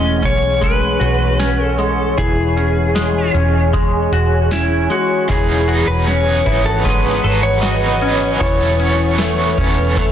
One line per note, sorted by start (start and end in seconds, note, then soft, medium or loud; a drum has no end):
0.00 0.20 E1 medium
0.00 2.17 E3 medium
0.00 0.61 G#3 medium
0.00 0.21 C#4 soft
0.00 5.26 G#4 medium
0.00 10.12 C#5 medium
0.00 0.25 D#5 medium
0.00 2.15 F#5 medium
0.00 5.25 C#6 medium
0.22 0.97 B1 medium
0.22 1.39 C#4 medium
0.22 0.63 C#5 medium
0.22 kick medium
0.22 closed hi-hat soft
0.61 1.78 G#3 medium
0.61 1.65 B4 medium
0.61 kick medium
0.61 closed hi-hat soft
1.00 2.14 B1 medium
1.00 4.12 F#4 medium
1.00 closed hi-hat soft
1.39 2.56 C#4 medium
1.39 snare medium
1.39 closed hi-hat medium
1.65 2.15 A4 medium
1.78 2.95 G#3 soft
1.78 closed hi-hat soft
2.17 3.31 E1 loud
2.17 5.29 E3 medium
2.17 3.31 G#4 medium
2.17 5.26 G#5 medium
2.17 kick loud
2.17 closed hi-hat medium
2.57 3.34 C#4 soft
2.57 closed hi-hat soft
2.95 3.73 G#3 medium
2.95 snare loud
2.95 closed hi-hat medium
3.34 4.08 E1 medium
3.34 4.51 C#4 soft
3.34 closed hi-hat soft
3.73 4.89 G#3 medium
3.73 kick medium
3.73 closed hi-hat soft
4.12 4.86 E1 medium
4.12 5.67 F#4 medium
4.12 closed hi-hat medium
4.51 6.07 C#4 medium
4.51 4.91 E4 medium
4.51 snare medium
4.51 closed hi-hat medium
4.90 5.71 G#3 soft
4.90 5.30 F#4 medium
4.90 closed hi-hat soft
5.28 5.85 E1 medium
5.28 5.68 C#3 medium
5.28 5.68 E3 medium
5.28 8.40 E3 medium
5.28 5.69 F#3 medium
5.28 5.69 B3 medium
5.28 5.67 D#4 medium
5.28 5.90 G#4 medium
5.28 5.65 G#4 medium
5.28 10.12 B4 medium
5.28 8.38 F#5 medium
5.28 8.38 D#6 medium
5.28 kick loud
5.28 closed hi-hat medium
5.67 6.06 B3 soft
5.67 6.08 D#4 soft
5.67 6.46 F#4 medium
5.67 6.07 G#4 soft
5.67 closed hi-hat medium
5.72 6.04 F#3 soft
5.87 6.43 E1 medium
5.87 6.08 B4 medium
6.05 6.45 F#3 medium
6.05 6.46 B3 soft
6.05 8.02 C#4 medium
6.05 6.45 D#4 soft
6.05 6.68 C#5 medium
6.05 8.76 C#5 medium
6.05 snare medium
6.05 closed hi-hat soft
6.10 6.42 G#4 medium
6.31 8.98 F#5 medium
6.44 7.21 G#1 medium
6.44 6.85 D#4 medium
6.44 6.66 E4 medium
6.44 6.84 G#4 medium
6.44 kick medium
6.44 closed hi-hat soft
6.48 6.84 F#3 soft
6.48 6.84 B3 soft
6.58 9.21 G#5 medium
6.66 7.61 F#4 soft
6.66 6.86 A4 medium
6.83 7.24 C#3 medium
6.83 7.23 E3 medium
6.83 7.24 F#3 medium
6.83 8.49 G#3 medium
6.83 7.24 B3 medium
6.83 7.23 D#4 medium
6.83 7.21 G#4 medium
6.83 7.43 B4 medium
6.83 kick medium
6.83 closed hi-hat medium
7.22 8.37 G#1 medium
7.22 7.62 B3 soft
7.22 7.63 D#4 soft
7.22 7.62 G#4 medium
7.22 7.43 A4 medium
7.22 closed hi-hat soft
7.27 7.59 F#3 soft
7.43 8.49 B4 soft
7.43 7.61 C#5 medium
7.61 8.01 F#3 medium
7.61 8.02 B3 medium
7.61 10.12 F#4 medium
7.61 8.43 D#5 medium
7.61 snare medium
7.61 closed hi-hat medium
7.65 8.01 D#4 medium
7.65 7.99 G#4 medium
8.00 8.42 B3 soft
8.00 8.79 C#4 medium
8.00 8.41 D#4 soft
8.00 8.40 G#4 soft
8.00 closed hi-hat soft
8.05 8.41 F#3 soft
8.40 9.54 E1 medium
8.40 8.80 C#3 medium
8.40 8.80 E3 medium
8.40 10.12 E3 medium
8.40 8.81 F#3 medium
8.40 8.81 B3 medium
8.40 10.12 A4 medium
8.40 8.79 A4 medium
8.40 10.12 C#5 medium
8.40 10.12 C#6 medium
8.40 kick medium
8.40 closed hi-hat medium
8.44 8.77 C#5 medium
8.78 9.57 C#4 soft
8.78 9.19 A4 soft
8.78 9.18 C#5 soft
8.78 closed hi-hat medium
8.83 9.16 F#3 soft
8.83 9.19 B3 soft
9.18 9.57 F#3 soft
9.18 9.96 A3 medium
9.18 9.58 B3 soft
9.18 9.57 A4 medium
9.18 10.12 E5 medium
9.18 snare medium
9.18 closed hi-hat soft
9.23 9.55 C#5 medium
9.56 10.12 E1 medium
9.56 9.97 B3 soft
9.56 10.12 C#4 soft
9.56 9.97 A4 medium
9.56 9.96 C#5 medium
9.56 kick medium
9.56 closed hi-hat soft
9.62 9.96 F#3 medium
9.96 10.12 C#3 medium
9.96 10.12 E3 medium
9.96 10.12 F#3 medium
9.96 10.12 A3 medium
9.96 10.12 B3 medium
9.96 10.12 A4 medium
9.96 10.12 C#5 medium
9.96 kick medium
9.96 closed hi-hat medium